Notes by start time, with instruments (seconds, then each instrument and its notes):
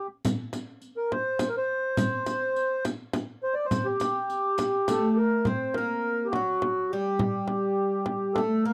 0.25 riq, frame drum
0.53 riq, frame drum
0.82 riq
0.97 accordion A#4
1.12 accordion C5, frame drum
1.39 riq, frame drum
1.49 accordion A#4
1.58 accordion C5
1.97 riq, frame drum
2.26 riq, frame drum
2.56 riq
2.85 riq, frame drum
3.13 riq, frame drum
3.43 accordion C5
3.54 accordion D5
3.65 accordion C5
3.71 riq, frame drum
3.85 accordion G4
4.00 riq, frame drum
4.30 riq
4.58 riq, frame drum
4.88 oud A3, accordion A4, riq, frame drum
5.17 accordion A#4
5.45 oud C4, accordion C5, frame drum
5.74 oud A#3, accordion A#4, frame drum
6.25 accordion G4
6.31 accordion F#4, frame drum
6.35 oud F#3
6.62 frame drum
6.91 oud G3, accordion G4
7.19 frame drum
7.48 frame drum
8.06 frame drum
8.34 oud A3, accordion A4, frame drum
8.65 oud A#3, accordion A#4